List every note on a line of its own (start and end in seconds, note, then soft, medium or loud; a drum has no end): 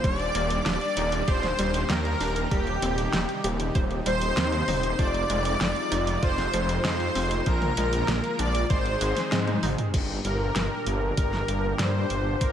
0.00 4.95 D#3 medium
0.00 4.95 G3 medium
0.00 0.23 G3 medium
0.00 2.48 A#3 medium
0.00 2.49 D4 medium
0.00 4.95 G4 medium
0.04 0.29 D#1 loud
0.04 0.65 D5 loud
0.04 kick loud
0.04 closed hi-hat medium
0.20 closed hi-hat soft
0.35 0.60 D#1 loud
0.35 0.54 A#3 medium
0.35 closed hi-hat medium
0.50 closed hi-hat medium
0.66 0.78 D#1 medium
0.66 0.77 D4 medium
0.66 1.27 D5 loud
0.66 1.30 D5 loud
0.66 snare loud
0.66 closed hi-hat soft
0.81 closed hi-hat soft
0.97 1.22 D#1 loud
0.97 1.08 D#4 medium
0.97 closed hi-hat medium
1.12 closed hi-hat medium
1.28 1.53 D#1 medium
1.28 1.47 G4 loud
1.28 1.89 C5 loud
1.28 1.92 C5 loud
1.28 kick loud
1.28 closed hi-hat medium
1.43 snare soft
1.43 closed hi-hat soft
1.59 1.84 D#1 medium
1.59 1.78 G3 medium
1.59 closed hi-hat medium
1.74 closed hi-hat soft
1.90 2.15 D#2 medium
1.90 2.09 A#3 medium
1.90 2.53 A#4 loud
1.90 2.51 A#4 loud
1.90 snare loud
1.90 closed hi-hat soft
2.05 closed hi-hat soft
2.20 2.46 D#1 medium
2.20 2.32 D4 medium
2.20 open hi-hat medium
2.36 closed hi-hat soft
2.51 2.77 D#1 loud
2.51 7.42 C3 medium
2.51 2.71 G3 medium
2.51 7.42 D#4 medium
2.51 3.40 G4 medium
2.51 kick loud
2.51 closed hi-hat medium
2.67 closed hi-hat soft
2.82 3.08 D#1 loud
2.82 3.02 C4 medium
2.82 closed hi-hat medium
2.98 closed hi-hat soft
3.13 3.26 D#1 medium
3.13 3.25 D#4 medium
3.13 snare loud
3.13 closed hi-hat soft
3.29 closed hi-hat soft
3.44 3.70 D#1 loud
3.44 3.56 G4 medium
3.44 closed hi-hat medium
3.60 closed hi-hat medium
3.75 4.01 D#1 medium
3.75 3.94 C5 loud
3.75 kick loud
3.75 closed hi-hat soft
3.91 closed hi-hat soft
4.06 4.31 D#1 medium
4.06 4.25 G3 medium
4.06 5.02 C5 loud
4.06 4.98 C5 loud
4.06 closed hi-hat medium
4.22 closed hi-hat medium
4.37 4.62 D#2 medium
4.37 4.56 C4 medium
4.37 snare loud
4.37 closed hi-hat medium
4.52 closed hi-hat soft
4.68 4.93 D#1 medium
4.68 4.80 D#4 medium
4.68 open hi-hat medium
4.68 mid tom medium
4.83 closed hi-hat soft
4.99 5.24 F1 loud
4.99 7.44 F3 medium
4.99 5.18 F3 medium
4.99 8.66 G#3 medium
4.99 8.66 F4 medium
4.99 6.22 D5 loud
4.99 6.26 D5 loud
4.99 kick loud
4.99 closed hi-hat medium
5.14 closed hi-hat soft
5.30 5.55 F1 loud
5.30 5.49 G#3 medium
5.30 closed hi-hat medium
5.45 closed hi-hat medium
5.61 5.73 F1 medium
5.61 5.72 C4 medium
5.61 snare loud
5.61 closed hi-hat medium
5.76 closed hi-hat soft
5.92 6.17 F1 loud
5.92 6.03 D#4 medium
5.92 closed hi-hat medium
6.07 closed hi-hat medium
6.23 6.48 F1 medium
6.23 6.42 F4 loud
6.23 6.84 C5 loud
6.23 kick loud
6.23 closed hi-hat medium
6.38 snare soft
6.38 closed hi-hat soft
6.53 6.79 F1 medium
6.53 6.73 F3 medium
6.53 closed hi-hat medium
6.69 closed hi-hat medium
6.84 7.10 F2 medium
6.84 7.04 G#3 medium
6.84 7.46 C5 loud
6.84 7.48 C5 loud
6.84 snare loud
6.84 closed hi-hat soft
7.00 closed hi-hat soft
7.15 7.41 F1 medium
7.15 7.27 C4 medium
7.15 open hi-hat medium
7.31 closed hi-hat medium
7.46 7.72 A#1 loud
7.46 8.69 D3 medium
7.46 7.66 F3 medium
7.46 8.69 F3 medium
7.46 8.69 A#3 medium
7.46 8.42 A#4 loud
7.46 8.39 A#4 loud
7.46 kick loud
7.46 closed hi-hat medium
7.62 closed hi-hat soft
7.62 mid tom medium
7.77 8.03 A#1 loud
7.77 7.97 G#3 medium
7.77 closed hi-hat medium
7.93 closed hi-hat medium
8.08 8.21 A#1 medium
8.08 8.20 A#3 medium
8.08 snare loud
8.08 closed hi-hat medium
8.24 closed hi-hat soft
8.39 8.64 A#1 loud
8.39 8.51 D4 medium
8.39 8.71 D5 loud
8.39 8.70 D5 loud
8.39 closed hi-hat loud
8.55 closed hi-hat medium
8.70 8.95 G#1 medium
8.70 9.93 C3 medium
8.70 9.93 D#3 medium
8.70 9.93 G#3 medium
8.70 9.93 D#4 medium
8.70 9.93 G#4 medium
8.70 8.89 C5 loud
8.70 9.59 C5 loud
8.70 9.59 C5 medium
8.70 kick loud
8.70 closed hi-hat medium
8.86 closed hi-hat soft
9.01 9.14 G#1 loud
9.01 9.20 G#3 medium
9.01 closed hi-hat medium
9.17 snare soft
9.17 closed hi-hat medium
9.32 9.57 G#2 medium
9.32 9.51 C4 medium
9.32 snare loud
9.32 closed hi-hat medium
9.32 high tom medium
9.47 closed hi-hat soft
9.47 high tom medium
9.63 9.76 G#1 loud
9.63 9.74 D#4 medium
9.63 open hi-hat medium
9.63 mid tom medium
9.78 closed hi-hat medium
9.78 mid tom medium
9.94 10.19 G1 loud
9.94 12.52 A#2 medium
9.94 12.52 D3 medium
9.94 12.52 G3 medium
9.94 12.52 D4 medium
9.94 12.52 G4 medium
9.94 kick loud
9.94 closed hi-hat medium
9.94 crash medium
10.25 10.50 G1 loud
10.25 11.16 A#4 loud
10.25 closed hi-hat medium
10.56 10.68 G1 medium
10.56 snare loud
10.56 closed hi-hat medium
10.87 11.12 G1 loud
10.87 closed hi-hat medium
11.17 11.43 G1 medium
11.17 11.81 A#4 loud
11.17 kick loud
11.17 closed hi-hat medium
11.33 snare soft
11.48 11.74 G1 medium
11.48 closed hi-hat medium
11.79 12.05 G2 medium
11.79 12.43 C5 loud
11.79 snare loud
11.79 closed hi-hat medium
12.10 12.36 G1 medium
12.10 closed hi-hat medium
12.41 12.52 G1 loud
12.41 12.52 A#4 loud
12.41 kick loud
12.41 closed hi-hat medium